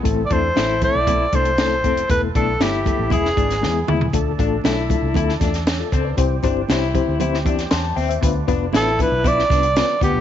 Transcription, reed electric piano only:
\new Staff \with { instrumentName = "Reed electric piano" } { \time 4/4 \key a \minor \tempo 4 = 117 << { r1 | r1 | r2. r16 <f' a'>16 <a' c''>16 <b' d''>16~ | <b' d''>16 r2 r8. <a'' c'''>16 a''16 <e'' g''>16 <c'' e''>16~ |
<c'' e''>16 r2. r8. | } \\ { <a c' e' a'>8 <a c' e' a'>8 <a c' e' a'>8 <a c' e' a'>8 <a c' e' a'>8 <a c' e' a'>8 <a c' e' a'>8 <a c' e' a'>8 | <a b e' a'>8 <a b e' a'>8 <a b e' a'>8 <a b e' a'>8 <gis b e' gis'>8 <gis b e' gis'>8 <gis b e' gis'>8 <gis b e' gis'>8 | <a d' f' a'>8 <a d' f' a'>8 <a d' f' a'>8 <a d' f' a'>8 <a d' f' a'>8 <a d' f' a'>8 r4 | <c' e' g' c''>8 <c' e' g' c''>8 <c' e' g' c''>8 <c' e' g' c''>8 <c' e' g' c''>8 <c' e' g' d''>8 r4 |
<b d' f' b'>8 <b d' f' b'>8 <b d' f' b'>8 <b d' f' b'>8 <b d' f' b'>8 <b d' f' b'>8 <b d' f' b'>8 <b d' f' g'>8 | } >> }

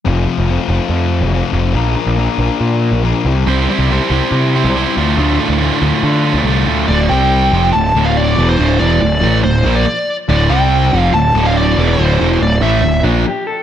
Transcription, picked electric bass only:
\new Staff \with { instrumentName = "Picked electric bass" } { \clef bass \time 4/4 \key d \minor \tempo 4 = 141 f,,8 r16 f,,8 r16 f,,16 r16 f,8. f,,8 r16 f,,8 | bes,,8 r16 bes,,8 r16 bes,,16 r16 bes,8. bes,,8 r16 c,8 | c,8 r16 c,8 r16 c,16 r16 c8. c,8 r16 d,8 | d,8 r16 d,8 r16 d,16 r16 d8. d,16 c,8 d,8 |
d,,8 c,4 f,,8 d,,8 d,,4 e,,8 | d,,8 e,,8 d,,8 a,,8 d,,8 bes,,8 r4 | d,,8 c,4 f,,8 d,,8 d,,4 e,,8 | d,,8 e,,8 d,,8 a,,8 d,,8 bes,,8 r4 | }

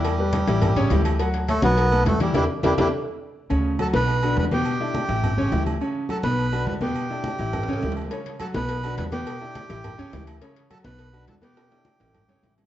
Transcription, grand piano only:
\new Staff \with { instrumentName = "Grand piano" } { \time 4/4 \key e \dorian \tempo 4 = 208 <e e' e''>8 <g g' b'>4 <e e' g'>4 <cis cis' cis''>8 <e e' g'>4 | <fis fis' fis''>4 <a a' cis''>8 <fis fis' fis''>4 <a a' b'>4 <e e' e''>8 | <d' e' g'>8 r8 <d' e' g'>8 <d' e' g'>8 r2 | <cis cis' cis''>4 <fis fis' a'>8 <b, b b'>4 <d d' fis'>4 <b, b b'>8~ |
<b, b b'>8 <d d' e'>4 <e e' g'>4 <cis cis' cis''>8 <e e' g'>4 | <cis cis' cis''>4 <fis fis' a'>8 <b, b b'>4 <d d' fis'>4 <b, b b'>8~ | <b, b b'>8 <d d' e'>4 <e e' g'>4 <cis cis' cis''>8 <e e' g'>4 | <cis cis' cis''>4 <fis fis' a'>8 <b, b b'>4 <d d' fis'>4 <b, b b'>8~ |
<b, b b'>8 <d d' e'>4 <e e' g'>4 <cis cis' cis''>8 <e e' g'>4 | <cis cis' cis''>4 <fis fis' a'>8 <b, b b'>4 <d d' fis'>4 <b, b b'>8~ | <b, b b'>8 <d d' e'>4 <e e' g'>4 <cis cis' cis''>8 <e e' g'>4 | }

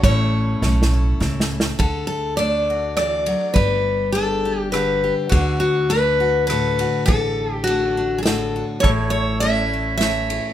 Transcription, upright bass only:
\new Staff \with { instrumentName = "Upright bass" } { \clef bass \time 3/4 \key d \major \tempo 4 = 102 a,,4 b,,4 cis,4 | d,2. | g,,2. | d,2. |
a,,2. | a,,2. | }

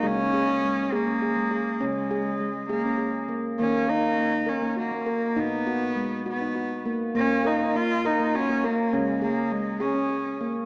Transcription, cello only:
\new Staff \with { instrumentName = "Cello" } { \time 6/8 \key ees \minor \tempo 4. = 68 des'4. bes4. | aes4. bes4 r8 | des'8 ees'4 des'8 bes4 | b4. b4 r8 |
des'8 ees'8 f'8 ees'8 des'8 bes8 | aes8 bes8 aes8 des'4 r8 | }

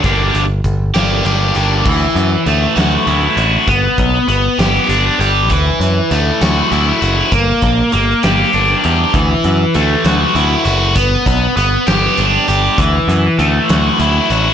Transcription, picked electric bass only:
\new Staff \with { instrumentName = "Picked electric bass" } { \clef bass \time 6/8 \key d \major \tempo 4. = 66 g,,8 g,,8 g,,8 g,,8 g,,8 g,,8 | d,8 fis,8 d,8 d,8 d,8 a,,8 | g,,8 b,,8 g,,8 g,,8 g,,8 g,,8 | d,8 fis,8 d,8 d,8 d,8 fis,,8 |
g,,8 bes,,8 g,,8 g,,8 g,,8 e,8 | d,8 fis,8 d,8 d,8 d,8 fis,,8 | g,,8 b,,8 g,,8 g,,8 g,,8 g,,8 | d,8 fis,8 d,8 d,8 d,8 a,,8 | }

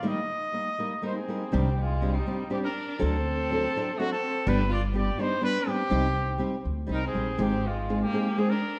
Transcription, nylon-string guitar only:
\new Staff \with { instrumentName = "Nylon-string guitar" } { \time 3/4 \key ees \major \tempo 4 = 123 <ees g bes ees' bes'>8 r8 <g bes ees' bes'>8 <g bes ees' bes'>8 <g bes ees' bes'>8 <g bes ees' bes'>8 | \key c \minor <c ees g c' d' g'>8 r8 <g c' d' g'>8 <g c' d' g'>8 <g c' d' g'>8 r8 | <d fis c' d' a'>8 r8 <fis c' d' a'>8 <fis c' d' a'>8 <fis c' d' a'>8 r8 | <g, d g b d' g'>8 r8 <g b d' g'>8 <g b d' g'>8 <g b d' g'>8 <g b d' g'>8 |
<c g c' ees' g'>8 r8 <g c' ees' g'>8 r8 <g c' ees' g'>8 <g c' ees' g'>8 | <aes, ees aes c' ees' aes'>8 r8 <aes c' ees' aes'>8 <aes c' ees' aes'>8 <aes c' ees' aes'>8 r8 | }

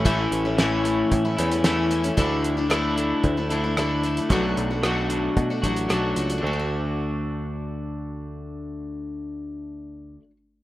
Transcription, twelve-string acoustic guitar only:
\new Staff \with { instrumentName = "Twelve-string acoustic guitar" } { \time 4/4 \key d \major \tempo 4 = 113 <a, e a cis' e'>8. <a cis' e'>16 <a, e a cis' e'>4~ <a, e a cis' e'>16 <a cis' e'>16 <e a cis' e'>16 <a cis' e'>16 <a, e a cis' e'>8 <e a cis' e'>16 <a cis' e'>16 | <d a d' e'>8. <a d' e'>16 <d a d' e'>4~ <d a d' e'>16 <a d' e'>16 <d a d' e'>16 <a d' e'>16 <d a d' e'>8 <d a d' e'>16 <a d' e'>16 | <b, fis a d' fis'>8. <a d' fis'>16 <b, fis a d' fis'>4~ <b, fis a d' fis'>16 <a d' fis'>16 <fis a d' fis'>8 <b, fis a d' fis'>8 <fis a d' fis'>16 <a d' fis'>16 | <d a d' fis'>1~ |
<d a d' fis'>1 | }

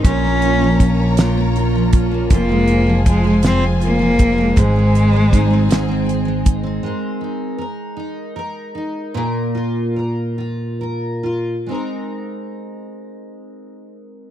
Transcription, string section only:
\new Staff \with { instrumentName = "String section" } { \time 6/8 \key aes \major \tempo 4. = 53 << { <bes' des'' bes''>2. | <aes' c'' aes''>2. | <aes' c'' aes''>2. | r2. |
r2. | r2. | } \\ { f'2.~ | f'2. | ees'2. | r2. |
r2. | r2. | } >> }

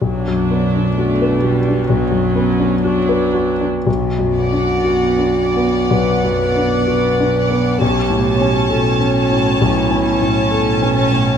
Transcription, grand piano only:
\new Staff \with { instrumentName = "Grand piano" } { \time 4/4 \key b \minor \tempo 4 = 65 b,,16 fis,16 b16 d'16 fis'16 b'16 fis'16 d'16 b,,16 fis,16 b16 d'16 fis'16 b'16 fis'16 d'16 | \tuplet 3/2 { b,,8 fis,8 d'8 fis'8 d'8 b8 b,,8 fis,8 d'8 fis'8 d'8 b8 } | \tuplet 3/2 { b,,8 a,8 cis'8 a'8 cis'8 a,8 b,,8 cis'8 a,8 a'8 cis'8 a,8 } | }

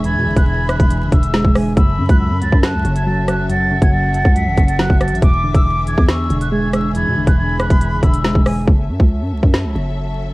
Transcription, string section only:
\new Staff \with { instrumentName = "String section" } { \time 4/4 \key fis \minor \tempo 4 = 139 << { e''1 | e''1~ | e''1~ | e''1~ |
e''1 | e''1 | } \\ { <e d' gis'>1 | <fis cis' a'>1~ | <fis cis' a'>1 | <e d' gis'>1~ |
<e d' gis'>1 | <fis cis' a'>1 | } >> }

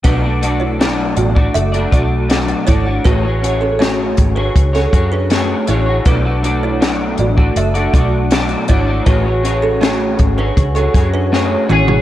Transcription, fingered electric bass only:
\new Staff \with { instrumentName = "Fingered electric bass" } { \clef bass \time 4/4 \key b \dorian \tempo 4 = 80 b,,4. a,,8 fis,,8 b,,4 gis,,8 | a,,4. gis,,8 cis,8 fis,4 a,,8 | b,,4. a,,8 fis,,8 b,,4 gis,,8 | a,,4. gis,,8 cis,8 fis,4 a,,8 | }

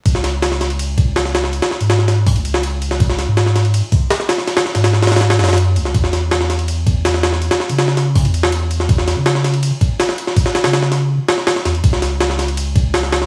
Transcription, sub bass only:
\new Staff \with { instrumentName = "Sub bass" } { \clef bass \time 4/4 \key cis \minor \tempo 4 = 163 cis,1~ | cis,16 r8 gis,4. cis,4.~ cis,16~ | cis,8. gis,4. r4. r16 | r8. gis,4.~ gis,16 fis,4 cis,8 |
e,1~ | e,16 r8 cis4. e,4.~ e,16~ | e,8. cis4. r4. r16 | r8. cis4. r4 r16 e,8 |
cis,1 | }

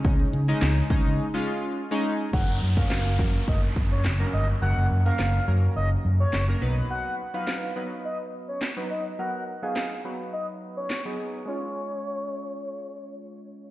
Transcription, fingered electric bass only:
\new Staff \with { instrumentName = "Fingered electric bass" } { \clef bass \time 4/4 \key ges \lydian \tempo 4 = 105 des,8 des8 des,8 des16 des16 r2 | ges,,16 ges,,16 ges,8 ges,,8 ges,8 ges,,8 ges,8 ges,,8 g,,8 | ges,,16 ges,,16 ges,8 ges,,8 ges,8 ges,,8 ges,8 ges,,8 ces,8 | r1 |
r1 | r1 | }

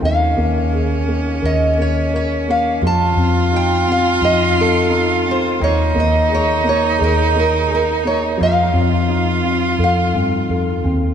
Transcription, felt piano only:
\new Staff \with { instrumentName = "Felt piano" } { \time 4/4 \key ees \dorian \tempo 4 = 86 ees8 bes8 aes'8 bes8 bes'8 bes8 bes'8 bes8 | f8 c'8 ees'8 c'8 ees'8 c'8 ees'8 c'8 | ees8 bes8 aes'8 bes8 aes'8 bes8 aes'8 bes8 | f8 c'8 ees'8 c'8 a'8 c'8 a'8 c'8 | }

